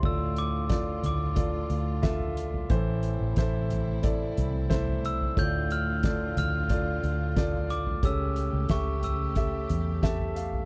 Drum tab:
CC |x---------------|----------------|----------------|----------------|
HH |--x-x-x-x-x-x-x-|x-x-x-x-x-x-x-x-|x-x-x-x-x-x-x-x-|x-x-x-x-x-x-x-x-|
SD |----o-------o---|----o-------o---|----o-------o---|----o-------o---|
FT |------o------o-o|------o---o--o-o|------o------o-o|------o---o--o-o|
BD |o---o---o---o---|o---o---o---o---|o---o---o---o---|o---o---o---o---|